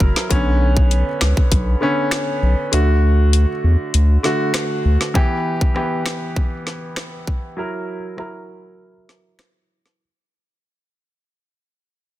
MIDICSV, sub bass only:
0, 0, Header, 1, 2, 480
1, 0, Start_track
1, 0, Tempo, 606061
1, 240, Time_signature, 4, 2, 24, 8
1, 9658, End_track
2, 0, Start_track
2, 0, Title_t, "Sub bass"
2, 0, Program_c, 0, 38
2, 3, Note_on_c, 0, 30, 92
2, 101, Note_off_c, 0, 30, 0
2, 242, Note_on_c, 0, 35, 109
2, 818, Note_off_c, 0, 35, 0
2, 962, Note_on_c, 0, 37, 97
2, 1061, Note_off_c, 0, 37, 0
2, 1201, Note_on_c, 0, 35, 106
2, 1389, Note_off_c, 0, 35, 0
2, 1920, Note_on_c, 0, 35, 92
2, 2020, Note_off_c, 0, 35, 0
2, 2161, Note_on_c, 0, 38, 111
2, 2738, Note_off_c, 0, 38, 0
2, 2881, Note_on_c, 0, 40, 96
2, 2980, Note_off_c, 0, 40, 0
2, 3120, Note_on_c, 0, 38, 117
2, 3308, Note_off_c, 0, 38, 0
2, 3841, Note_on_c, 0, 38, 88
2, 3940, Note_off_c, 0, 38, 0
2, 9658, End_track
0, 0, End_of_file